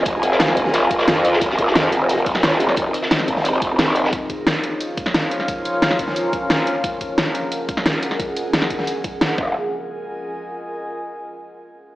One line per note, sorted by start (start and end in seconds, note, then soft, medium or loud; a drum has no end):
0.00 1.39 C4 medium
0.00 1.39 F4 medium
0.00 5.21 F4 medium
0.00 4.09 G#4 medium
0.00 5.21 A#4 medium
0.00 5.21 D#5 medium
0.00 1.39 F5 medium
0.00 1.99 G#5 medium
0.05 0.22 F1 medium
0.05 kick loud
0.05 closed hi-hat medium
0.23 1.06 F1 loud
0.23 closed hi-hat medium
0.32 snare medium
0.40 snare loud
0.40 closed hi-hat medium
0.48 snare medium
0.57 kick medium
0.57 closed hi-hat medium
0.65 snare soft
0.74 snare loud
0.74 closed hi-hat medium
0.91 kick loud
0.91 closed hi-hat medium
0.99 snare loud
0.99 closed hi-hat medium
1.08 1.40 F2 medium
1.08 snare loud
1.08 closed hi-hat medium
1.16 closed hi-hat medium
1.25 closed hi-hat medium
1.33 snare medium
1.41 1.57 F1 loud
1.41 4.10 C4 medium
1.41 4.13 C4 medium
1.41 4.10 D#4 medium
1.41 4.10 D#5 medium
1.41 kick loud
1.41 closed hi-hat medium
1.50 snare medium
1.59 1.74 G#1 loud
1.59 kick medium
1.59 closed hi-hat medium
1.67 snare medium
1.75 1.91 F2 loud
1.75 snare loud
1.75 closed hi-hat medium
1.92 2.51 F1 loud
1.92 closed hi-hat medium
2.09 closed hi-hat loud
2.09 closed hi-hat medium
2.17 closed hi-hat soft
2.26 kick loud
2.26 closed hi-hat medium
2.26 open hi-hat medium
2.35 snare soft
2.35 snare medium
2.43 snare loud
2.43 closed hi-hat medium
2.51 2.76 E1 loud
2.51 snare medium
2.60 closed hi-hat medium
2.69 snare soft
2.76 2.93 F1 medium
2.76 kick loud
2.76 closed hi-hat medium
2.94 closed hi-hat medium
3.03 snare medium
3.11 snare loud
3.11 closed hi-hat medium
3.20 snare medium
3.28 3.78 F1 loud
3.28 kick medium
3.28 closed hi-hat medium
3.37 snare soft
3.45 closed hi-hat medium
3.53 closed hi-hat soft
3.62 kick loud
3.62 closed hi-hat medium
3.79 4.11 F1 loud
3.79 snare loud
3.79 closed hi-hat medium
3.88 snare soft
3.95 closed hi-hat medium
4.05 snare medium
4.13 9.34 F3 medium
4.13 6.83 F3 medium
4.13 9.34 C#4 medium
4.13 6.81 F4 medium
4.13 9.34 A#4 medium
4.13 6.81 F5 medium
4.13 kick loud
4.13 closed hi-hat medium
4.26 7.25 D#4 medium
4.26 7.65 C#5 medium
4.26 kick medium
4.26 closed hi-hat medium
4.36 7.43 G#4 medium
4.47 snare loud
4.47 closed hi-hat medium
4.64 closed hi-hat medium
4.81 closed hi-hat medium
4.97 kick loud
4.97 closed hi-hat medium
5.06 snare medium
5.14 snare loud
5.14 closed hi-hat medium
5.31 closed hi-hat medium
5.40 snare soft
5.48 kick loud
5.48 closed hi-hat medium
5.65 closed hi-hat medium
5.82 snare loud
5.82 closed hi-hat medium
5.91 snare medium
5.99 kick medium
5.99 closed hi-hat medium
6.08 snare soft
6.16 closed hi-hat medium
6.33 kick loud
6.33 closed hi-hat medium
6.50 snare loud
6.50 closed hi-hat medium
6.67 closed hi-hat medium
6.84 9.38 F3 medium
6.84 9.36 G#4 medium
6.84 9.36 F#5 medium
6.84 kick loud
6.84 closed hi-hat medium
6.89 9.38 D#5 medium
7.00 9.38 A#4 medium
7.00 kick medium
7.00 closed hi-hat medium
7.12 9.38 G#5 medium
7.18 snare loud
7.18 closed hi-hat medium
7.35 closed hi-hat medium
7.52 closed hi-hat medium
7.69 kick loud
7.69 closed hi-hat medium
7.77 snare medium
7.86 snare loud
7.86 closed hi-hat medium
8.03 closed hi-hat medium
8.11 snare soft
8.20 kick loud
8.20 closed hi-hat medium
8.37 closed hi-hat medium
8.53 snare loud
8.53 closed hi-hat loud
8.62 snare medium
8.70 kick medium
8.70 closed hi-hat medium
8.79 snare soft
8.87 closed hi-hat loud
9.04 kick loud
9.04 closed hi-hat medium
9.21 snare loud
9.21 closed hi-hat medium
9.38 9.54 F1 loud
9.38 10.70 F4 medium
9.38 kick loud
9.43 10.70 A#4 medium
9.65 10.87 D#5 medium
9.70 10.87 G#5 medium